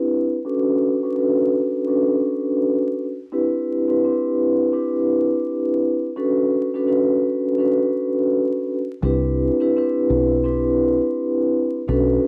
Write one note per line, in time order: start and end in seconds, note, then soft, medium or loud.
0.00 0.36 C4 medium
0.00 0.36 D4 medium
0.00 0.36 E4 medium
0.00 0.37 G4 medium
0.00 0.37 B4 loud
0.45 0.98 C#4 loud
0.45 0.98 D4 medium
0.45 0.98 F#4 medium
0.45 0.98 A4 medium
0.45 0.98 B4 medium
1.03 1.15 C#4 medium
1.03 1.15 D4 medium
1.03 1.15 F#4 medium
1.03 1.16 A4 medium
1.03 1.16 B4 loud
1.16 1.83 C#4 medium
1.16 1.84 D4 medium
1.16 1.84 F#4 medium
1.16 1.84 A4 medium
1.16 1.84 B4 loud
1.87 3.04 C#4 medium
1.87 3.05 D4 medium
1.87 3.05 F#4 medium
1.87 3.05 A4 medium
1.87 3.05 B4 loud
3.32 3.84 C4 medium
3.32 3.84 D4 medium
3.32 3.84 E4 medium
3.32 3.84 G4 medium
3.32 3.85 B4 medium
3.88 4.03 C4 medium
3.88 4.04 D4 medium
3.88 4.04 E4 medium
3.88 4.05 G4 medium
3.88 4.05 B4 loud
4.05 4.71 C4 medium
4.05 4.71 D4 medium
4.05 4.71 E4 medium
4.05 4.71 G4 medium
4.05 4.71 B4 loud
4.73 6.07 C4 medium
4.73 6.08 D4 medium
4.73 6.08 E4 medium
4.73 6.08 G4 medium
4.73 6.08 B4 loud
6.16 6.69 C#4 loud
6.16 6.69 D4 medium
6.16 6.69 F#4 medium
6.16 6.70 A4 medium
6.16 6.70 B4 medium
6.74 6.86 C#4 medium
6.74 6.86 D4 medium
6.74 6.87 F#4 medium
6.74 6.87 A4 medium
6.74 6.87 B4 loud
6.87 7.55 C#4 medium
6.87 7.55 D4 medium
6.87 7.55 F#4 medium
6.87 7.55 A4 medium
6.87 7.55 B4 loud
7.58 8.76 C#4 medium
7.58 8.76 D4 medium
7.58 8.76 F#4 medium
7.58 8.76 A4 medium
7.58 8.77 B4 loud
9.03 9.49 C2 loud
9.03 9.55 C4 medium
9.03 9.56 D4 medium
9.03 9.56 E4 medium
9.03 9.56 G4 medium
9.03 9.56 B4 loud
9.60 9.75 C4 medium
9.60 9.76 D4 medium
9.60 9.76 E4 medium
9.60 9.77 G4 medium
9.60 9.77 B4 loud
9.76 10.42 C4 medium
9.76 10.42 D4 medium
9.76 10.43 E4 medium
9.76 10.43 G4 medium
9.76 10.43 B4 loud
10.10 10.99 B1 medium
10.44 11.79 C4 medium
10.44 11.79 D4 medium
10.44 11.79 E4 medium
10.44 11.79 G4 medium
10.44 11.80 B4 loud
11.88 12.17 B1 loud
11.88 12.27 C#4 loud
11.88 12.27 D4 medium
11.88 12.27 F#4 medium
11.88 12.27 A4 medium
11.88 12.27 B4 medium